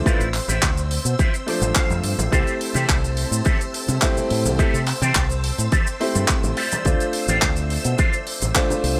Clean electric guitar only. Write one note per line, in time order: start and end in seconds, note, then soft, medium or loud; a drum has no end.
0.06 0.27 E4 loud
0.06 0.27 F4 loud
0.06 0.27 C5 loud
0.06 0.27 D5 loud
0.48 0.70 E4 medium
0.48 0.70 F4 medium
0.48 0.70 C5 medium
0.48 0.70 E5 loud
0.91 muted clean electric guitar stroke soft
1.05 muted clean electric guitar stroke medium
1.19 1.34 E4 medium
1.19 1.34 F4 medium
1.19 1.34 C5 medium
1.19 1.34 E5 medium
1.47 1.50 D5 medium
1.47 muted clean electric guitar stroke soft
1.76 2.28 F5 medium
2.04 muted clean electric guitar stroke soft
2.32 2.54 G4 loud
2.32 2.54 A4 loud
2.32 2.54 C5 medium
2.32 2.54 E5 loud
2.74 2.96 G4 medium
2.74 2.96 A4 medium
2.74 2.96 C5 medium
2.74 2.96 E5 loud
3.17 muted clean electric guitar stroke soft
3.31 muted clean electric guitar stroke medium
3.44 3.60 G4 medium
3.44 3.60 A4 medium
3.44 3.60 C5 medium
3.44 3.60 E5 loud
3.73 muted clean electric guitar stroke soft
4.30 muted clean electric guitar stroke soft
4.58 4.80 G4 loud
4.58 4.80 A4 loud
4.58 4.80 C5 loud
4.58 4.80 E5 loud
5.02 5.23 G4 medium
5.02 5.23 A4 medium
5.02 5.23 C5 medium
5.02 5.23 G5 loud
5.44 muted clean electric guitar stroke soft
5.58 muted clean electric guitar stroke medium
5.71 5.87 G4 medium
5.71 5.87 A4 medium
5.71 5.87 C5 medium
5.71 5.87 E5 medium
6.00 muted clean electric guitar stroke soft
6.57 7.13 F4 medium
6.57 7.14 C5 medium
6.57 7.14 D5 medium
6.57 7.14 E5 loud
7.28 7.49 F4 medium
7.28 7.49 C5 medium
7.28 7.49 D5 medium
7.28 7.50 F5 loud
7.70 muted clean electric guitar stroke soft
7.85 muted clean electric guitar stroke medium
7.98 8.13 F4 medium
7.98 8.13 C5 medium
7.98 8.13 D5 medium
7.98 8.13 F5 medium
8.27 muted clean electric guitar stroke soft
8.84 muted clean electric guitar stroke soft